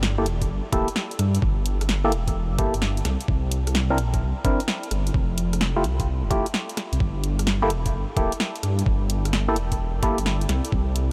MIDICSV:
0, 0, Header, 1, 5, 480
1, 0, Start_track
1, 0, Tempo, 465116
1, 1468, Time_signature, 4, 2, 24, 8
1, 11479, End_track
2, 0, Start_track
2, 0, Title_t, "Ambient pad"
2, 0, Program_c, 0, 92
2, 0, Note_on_c, 0, 64, 82
2, 0, Note_on_c, 0, 69, 82
2, 0, Note_on_c, 0, 74, 83
2, 0, Note_on_c, 0, 79, 75
2, 5297, Note_off_c, 0, 64, 0
2, 5306, Note_off_c, 0, 74, 0
2, 5308, Note_off_c, 0, 69, 0
2, 5308, Note_off_c, 0, 79, 0
2, 5310, Note_on_c, 0, 64, 83
2, 5630, Note_on_c, 0, 69, 85
2, 5772, Note_on_c, 0, 74, 75
2, 6210, Note_on_c, 0, 79, 74
2, 11479, Note_off_c, 0, 64, 0
2, 11479, Note_off_c, 0, 69, 0
2, 11479, Note_off_c, 0, 74, 0
2, 11479, Note_off_c, 0, 79, 0
2, 11479, End_track
3, 0, Start_track
3, 0, Title_t, "Synth stab"
3, 0, Program_c, 1, 62
3, 189, Note_on_c, 1, 58, 94
3, 189, Note_on_c, 1, 64, 84
3, 189, Note_on_c, 1, 67, 82
3, 189, Note_on_c, 1, 69, 101
3, 268, Note_off_c, 1, 58, 0
3, 268, Note_off_c, 1, 64, 0
3, 268, Note_off_c, 1, 67, 0
3, 268, Note_off_c, 1, 69, 0
3, 749, Note_on_c, 1, 58, 81
3, 749, Note_on_c, 1, 64, 77
3, 749, Note_on_c, 1, 67, 78
3, 749, Note_on_c, 1, 69, 92
3, 908, Note_off_c, 1, 58, 0
3, 908, Note_off_c, 1, 64, 0
3, 908, Note_off_c, 1, 67, 0
3, 908, Note_off_c, 1, 69, 0
3, 2110, Note_on_c, 1, 58, 90
3, 2110, Note_on_c, 1, 64, 85
3, 2110, Note_on_c, 1, 67, 85
3, 2110, Note_on_c, 1, 69, 99
3, 2188, Note_off_c, 1, 58, 0
3, 2189, Note_off_c, 1, 64, 0
3, 2189, Note_off_c, 1, 67, 0
3, 2189, Note_off_c, 1, 69, 0
3, 2670, Note_on_c, 1, 58, 83
3, 2670, Note_on_c, 1, 64, 76
3, 2670, Note_on_c, 1, 67, 76
3, 2670, Note_on_c, 1, 69, 93
3, 2828, Note_off_c, 1, 58, 0
3, 2828, Note_off_c, 1, 64, 0
3, 2828, Note_off_c, 1, 67, 0
3, 2829, Note_off_c, 1, 69, 0
3, 4029, Note_on_c, 1, 62, 83
3, 4029, Note_on_c, 1, 64, 85
3, 4029, Note_on_c, 1, 70, 102
3, 4030, Note_on_c, 1, 60, 91
3, 4108, Note_off_c, 1, 60, 0
3, 4108, Note_off_c, 1, 62, 0
3, 4108, Note_off_c, 1, 64, 0
3, 4108, Note_off_c, 1, 70, 0
3, 4588, Note_on_c, 1, 60, 84
3, 4588, Note_on_c, 1, 64, 74
3, 4589, Note_on_c, 1, 62, 78
3, 4589, Note_on_c, 1, 70, 93
3, 4747, Note_off_c, 1, 64, 0
3, 4748, Note_off_c, 1, 60, 0
3, 4748, Note_off_c, 1, 62, 0
3, 4748, Note_off_c, 1, 70, 0
3, 5948, Note_on_c, 1, 57, 91
3, 5948, Note_on_c, 1, 64, 83
3, 5948, Note_on_c, 1, 65, 86
3, 5948, Note_on_c, 1, 67, 100
3, 6027, Note_off_c, 1, 57, 0
3, 6027, Note_off_c, 1, 64, 0
3, 6027, Note_off_c, 1, 65, 0
3, 6028, Note_off_c, 1, 67, 0
3, 6507, Note_on_c, 1, 67, 93
3, 6508, Note_on_c, 1, 57, 85
3, 6508, Note_on_c, 1, 64, 76
3, 6508, Note_on_c, 1, 65, 75
3, 6667, Note_off_c, 1, 57, 0
3, 6667, Note_off_c, 1, 64, 0
3, 6667, Note_off_c, 1, 65, 0
3, 6667, Note_off_c, 1, 67, 0
3, 7867, Note_on_c, 1, 58, 91
3, 7867, Note_on_c, 1, 64, 87
3, 7867, Note_on_c, 1, 67, 86
3, 7867, Note_on_c, 1, 69, 101
3, 7947, Note_off_c, 1, 58, 0
3, 7947, Note_off_c, 1, 64, 0
3, 7947, Note_off_c, 1, 67, 0
3, 7947, Note_off_c, 1, 69, 0
3, 8428, Note_on_c, 1, 58, 85
3, 8428, Note_on_c, 1, 64, 78
3, 8428, Note_on_c, 1, 67, 77
3, 8428, Note_on_c, 1, 69, 94
3, 8587, Note_off_c, 1, 58, 0
3, 8587, Note_off_c, 1, 64, 0
3, 8587, Note_off_c, 1, 67, 0
3, 8587, Note_off_c, 1, 69, 0
3, 9788, Note_on_c, 1, 64, 82
3, 9788, Note_on_c, 1, 69, 98
3, 9789, Note_on_c, 1, 58, 90
3, 9789, Note_on_c, 1, 67, 82
3, 9867, Note_off_c, 1, 64, 0
3, 9867, Note_off_c, 1, 69, 0
3, 9868, Note_off_c, 1, 58, 0
3, 9868, Note_off_c, 1, 67, 0
3, 10347, Note_on_c, 1, 58, 84
3, 10347, Note_on_c, 1, 67, 77
3, 10348, Note_on_c, 1, 64, 77
3, 10348, Note_on_c, 1, 69, 92
3, 10507, Note_off_c, 1, 58, 0
3, 10507, Note_off_c, 1, 67, 0
3, 10507, Note_off_c, 1, 69, 0
3, 10508, Note_off_c, 1, 64, 0
3, 11479, End_track
4, 0, Start_track
4, 0, Title_t, "Detuned saw bass"
4, 0, Program_c, 2, 39
4, 0, Note_on_c, 2, 31, 93
4, 270, Note_on_c, 2, 28, 96
4, 285, Note_off_c, 2, 31, 0
4, 508, Note_on_c, 2, 31, 99
4, 523, Note_off_c, 2, 28, 0
4, 631, Note_off_c, 2, 31, 0
4, 747, Note_on_c, 2, 26, 94
4, 871, Note_off_c, 2, 26, 0
4, 1227, Note_on_c, 2, 43, 93
4, 1430, Note_off_c, 2, 43, 0
4, 1468, Note_on_c, 2, 31, 96
4, 2188, Note_on_c, 2, 28, 96
4, 2203, Note_off_c, 2, 31, 0
4, 2588, Note_on_c, 2, 31, 91
4, 2603, Note_off_c, 2, 28, 0
4, 2754, Note_off_c, 2, 31, 0
4, 2828, Note_on_c, 2, 31, 83
4, 3118, Note_off_c, 2, 31, 0
4, 3148, Note_on_c, 2, 36, 105
4, 3271, Note_off_c, 2, 36, 0
4, 3388, Note_on_c, 2, 36, 97
4, 4110, Note_on_c, 2, 34, 95
4, 4126, Note_off_c, 2, 36, 0
4, 4350, Note_on_c, 2, 36, 101
4, 4365, Note_off_c, 2, 34, 0
4, 4472, Note_off_c, 2, 36, 0
4, 4588, Note_on_c, 2, 31, 95
4, 4711, Note_off_c, 2, 31, 0
4, 5068, Note_on_c, 2, 31, 93
4, 5271, Note_off_c, 2, 31, 0
4, 5308, Note_on_c, 2, 29, 95
4, 6026, Note_on_c, 2, 36, 98
4, 6042, Note_off_c, 2, 29, 0
4, 6428, Note_on_c, 2, 29, 91
4, 6444, Note_off_c, 2, 36, 0
4, 6594, Note_off_c, 2, 29, 0
4, 7146, Note_on_c, 2, 36, 83
4, 7208, Note_off_c, 2, 36, 0
4, 7226, Note_on_c, 2, 31, 96
4, 7949, Note_on_c, 2, 28, 97
4, 7964, Note_off_c, 2, 31, 0
4, 8187, Note_on_c, 2, 31, 101
4, 8203, Note_off_c, 2, 28, 0
4, 8310, Note_off_c, 2, 31, 0
4, 8426, Note_on_c, 2, 26, 95
4, 8550, Note_off_c, 2, 26, 0
4, 8907, Note_on_c, 2, 43, 92
4, 9110, Note_off_c, 2, 43, 0
4, 9146, Note_on_c, 2, 31, 98
4, 9868, Note_on_c, 2, 28, 95
4, 9884, Note_off_c, 2, 31, 0
4, 10268, Note_on_c, 2, 31, 89
4, 10283, Note_off_c, 2, 28, 0
4, 10434, Note_off_c, 2, 31, 0
4, 10509, Note_on_c, 2, 31, 81
4, 10798, Note_off_c, 2, 31, 0
4, 10828, Note_on_c, 2, 36, 106
4, 10951, Note_off_c, 2, 36, 0
4, 11067, Note_on_c, 2, 36, 97
4, 11479, Note_off_c, 2, 36, 0
4, 11479, End_track
5, 0, Start_track
5, 0, Title_t, "Drums"
5, 28, Note_on_c, 9, 38, 116
5, 131, Note_off_c, 9, 38, 0
5, 269, Note_on_c, 9, 42, 105
5, 372, Note_off_c, 9, 42, 0
5, 428, Note_on_c, 9, 36, 58
5, 429, Note_on_c, 9, 42, 62
5, 531, Note_off_c, 9, 36, 0
5, 532, Note_off_c, 9, 42, 0
5, 748, Note_on_c, 9, 36, 100
5, 749, Note_on_c, 9, 42, 107
5, 851, Note_off_c, 9, 36, 0
5, 853, Note_off_c, 9, 42, 0
5, 909, Note_on_c, 9, 42, 62
5, 989, Note_on_c, 9, 38, 113
5, 1012, Note_off_c, 9, 42, 0
5, 1092, Note_off_c, 9, 38, 0
5, 1149, Note_on_c, 9, 42, 50
5, 1229, Note_off_c, 9, 42, 0
5, 1229, Note_on_c, 9, 37, 56
5, 1229, Note_on_c, 9, 42, 108
5, 1333, Note_off_c, 9, 37, 0
5, 1333, Note_off_c, 9, 42, 0
5, 1389, Note_on_c, 9, 42, 64
5, 1468, Note_on_c, 9, 36, 120
5, 1492, Note_off_c, 9, 42, 0
5, 1571, Note_off_c, 9, 36, 0
5, 1709, Note_on_c, 9, 42, 103
5, 1812, Note_off_c, 9, 42, 0
5, 1870, Note_on_c, 9, 37, 58
5, 1870, Note_on_c, 9, 42, 63
5, 1949, Note_on_c, 9, 38, 122
5, 1973, Note_off_c, 9, 37, 0
5, 1973, Note_off_c, 9, 42, 0
5, 2052, Note_off_c, 9, 38, 0
5, 2189, Note_on_c, 9, 42, 99
5, 2292, Note_off_c, 9, 42, 0
5, 2348, Note_on_c, 9, 36, 62
5, 2349, Note_on_c, 9, 42, 62
5, 2451, Note_off_c, 9, 36, 0
5, 2452, Note_off_c, 9, 42, 0
5, 2668, Note_on_c, 9, 36, 107
5, 2668, Note_on_c, 9, 42, 106
5, 2771, Note_off_c, 9, 42, 0
5, 2772, Note_off_c, 9, 36, 0
5, 2828, Note_on_c, 9, 42, 62
5, 2907, Note_on_c, 9, 38, 118
5, 2931, Note_off_c, 9, 42, 0
5, 3011, Note_off_c, 9, 38, 0
5, 3068, Note_on_c, 9, 42, 50
5, 3148, Note_off_c, 9, 42, 0
5, 3148, Note_on_c, 9, 37, 57
5, 3148, Note_on_c, 9, 38, 64
5, 3148, Note_on_c, 9, 42, 108
5, 3251, Note_off_c, 9, 37, 0
5, 3251, Note_off_c, 9, 38, 0
5, 3251, Note_off_c, 9, 42, 0
5, 3308, Note_on_c, 9, 42, 61
5, 3388, Note_on_c, 9, 36, 121
5, 3411, Note_off_c, 9, 42, 0
5, 3491, Note_off_c, 9, 36, 0
5, 3628, Note_on_c, 9, 42, 103
5, 3731, Note_off_c, 9, 42, 0
5, 3789, Note_on_c, 9, 37, 57
5, 3789, Note_on_c, 9, 42, 63
5, 3868, Note_on_c, 9, 38, 123
5, 3892, Note_off_c, 9, 37, 0
5, 3892, Note_off_c, 9, 42, 0
5, 3971, Note_off_c, 9, 38, 0
5, 4108, Note_on_c, 9, 42, 97
5, 4211, Note_off_c, 9, 42, 0
5, 4268, Note_on_c, 9, 36, 63
5, 4269, Note_on_c, 9, 42, 59
5, 4372, Note_off_c, 9, 36, 0
5, 4372, Note_off_c, 9, 42, 0
5, 4588, Note_on_c, 9, 36, 107
5, 4588, Note_on_c, 9, 42, 103
5, 4691, Note_off_c, 9, 36, 0
5, 4692, Note_off_c, 9, 42, 0
5, 4748, Note_on_c, 9, 42, 63
5, 4828, Note_on_c, 9, 38, 122
5, 4852, Note_off_c, 9, 42, 0
5, 4931, Note_off_c, 9, 38, 0
5, 4989, Note_on_c, 9, 42, 49
5, 5069, Note_off_c, 9, 42, 0
5, 5069, Note_on_c, 9, 37, 56
5, 5069, Note_on_c, 9, 42, 101
5, 5172, Note_off_c, 9, 37, 0
5, 5172, Note_off_c, 9, 42, 0
5, 5229, Note_on_c, 9, 42, 62
5, 5308, Note_on_c, 9, 36, 119
5, 5333, Note_off_c, 9, 42, 0
5, 5411, Note_off_c, 9, 36, 0
5, 5549, Note_on_c, 9, 42, 101
5, 5652, Note_off_c, 9, 42, 0
5, 5709, Note_on_c, 9, 37, 55
5, 5709, Note_on_c, 9, 42, 63
5, 5788, Note_on_c, 9, 38, 123
5, 5812, Note_off_c, 9, 37, 0
5, 5812, Note_off_c, 9, 42, 0
5, 5891, Note_off_c, 9, 38, 0
5, 6029, Note_on_c, 9, 42, 96
5, 6132, Note_off_c, 9, 42, 0
5, 6188, Note_on_c, 9, 36, 61
5, 6189, Note_on_c, 9, 42, 61
5, 6291, Note_off_c, 9, 36, 0
5, 6292, Note_off_c, 9, 42, 0
5, 6507, Note_on_c, 9, 36, 107
5, 6509, Note_on_c, 9, 42, 98
5, 6610, Note_off_c, 9, 36, 0
5, 6612, Note_off_c, 9, 42, 0
5, 6669, Note_on_c, 9, 42, 62
5, 6748, Note_on_c, 9, 38, 116
5, 6772, Note_off_c, 9, 42, 0
5, 6851, Note_off_c, 9, 38, 0
5, 6908, Note_on_c, 9, 42, 50
5, 6989, Note_off_c, 9, 42, 0
5, 6989, Note_on_c, 9, 37, 54
5, 6989, Note_on_c, 9, 38, 62
5, 6989, Note_on_c, 9, 42, 101
5, 7092, Note_off_c, 9, 37, 0
5, 7092, Note_off_c, 9, 38, 0
5, 7092, Note_off_c, 9, 42, 0
5, 7149, Note_on_c, 9, 42, 62
5, 7227, Note_on_c, 9, 36, 117
5, 7252, Note_off_c, 9, 42, 0
5, 7330, Note_off_c, 9, 36, 0
5, 7468, Note_on_c, 9, 42, 100
5, 7571, Note_off_c, 9, 42, 0
5, 7629, Note_on_c, 9, 37, 53
5, 7629, Note_on_c, 9, 42, 66
5, 7707, Note_on_c, 9, 38, 120
5, 7732, Note_off_c, 9, 37, 0
5, 7732, Note_off_c, 9, 42, 0
5, 7811, Note_off_c, 9, 38, 0
5, 7948, Note_on_c, 9, 42, 96
5, 8051, Note_off_c, 9, 42, 0
5, 8107, Note_on_c, 9, 36, 58
5, 8108, Note_on_c, 9, 42, 64
5, 8210, Note_off_c, 9, 36, 0
5, 8211, Note_off_c, 9, 42, 0
5, 8427, Note_on_c, 9, 36, 103
5, 8428, Note_on_c, 9, 42, 98
5, 8530, Note_off_c, 9, 36, 0
5, 8531, Note_off_c, 9, 42, 0
5, 8589, Note_on_c, 9, 42, 67
5, 8669, Note_on_c, 9, 38, 117
5, 8692, Note_off_c, 9, 42, 0
5, 8772, Note_off_c, 9, 38, 0
5, 8829, Note_on_c, 9, 42, 52
5, 8909, Note_off_c, 9, 42, 0
5, 8909, Note_on_c, 9, 37, 52
5, 8909, Note_on_c, 9, 42, 100
5, 9012, Note_off_c, 9, 37, 0
5, 9012, Note_off_c, 9, 42, 0
5, 9069, Note_on_c, 9, 42, 65
5, 9147, Note_on_c, 9, 36, 114
5, 9172, Note_off_c, 9, 42, 0
5, 9250, Note_off_c, 9, 36, 0
5, 9389, Note_on_c, 9, 42, 107
5, 9492, Note_off_c, 9, 42, 0
5, 9550, Note_on_c, 9, 37, 54
5, 9550, Note_on_c, 9, 42, 70
5, 9629, Note_on_c, 9, 38, 115
5, 9653, Note_off_c, 9, 37, 0
5, 9653, Note_off_c, 9, 42, 0
5, 9732, Note_off_c, 9, 38, 0
5, 9868, Note_on_c, 9, 42, 100
5, 9971, Note_off_c, 9, 42, 0
5, 10027, Note_on_c, 9, 36, 58
5, 10028, Note_on_c, 9, 42, 67
5, 10131, Note_off_c, 9, 36, 0
5, 10132, Note_off_c, 9, 42, 0
5, 10347, Note_on_c, 9, 36, 98
5, 10347, Note_on_c, 9, 42, 103
5, 10450, Note_off_c, 9, 36, 0
5, 10451, Note_off_c, 9, 42, 0
5, 10508, Note_on_c, 9, 42, 69
5, 10587, Note_on_c, 9, 38, 109
5, 10611, Note_off_c, 9, 42, 0
5, 10690, Note_off_c, 9, 38, 0
5, 10747, Note_on_c, 9, 42, 54
5, 10827, Note_off_c, 9, 42, 0
5, 10827, Note_on_c, 9, 37, 52
5, 10827, Note_on_c, 9, 38, 59
5, 10827, Note_on_c, 9, 42, 103
5, 10930, Note_off_c, 9, 37, 0
5, 10930, Note_off_c, 9, 38, 0
5, 10930, Note_off_c, 9, 42, 0
5, 10987, Note_on_c, 9, 42, 68
5, 11067, Note_on_c, 9, 36, 113
5, 11090, Note_off_c, 9, 42, 0
5, 11170, Note_off_c, 9, 36, 0
5, 11307, Note_on_c, 9, 42, 109
5, 11410, Note_off_c, 9, 42, 0
5, 11479, End_track
0, 0, End_of_file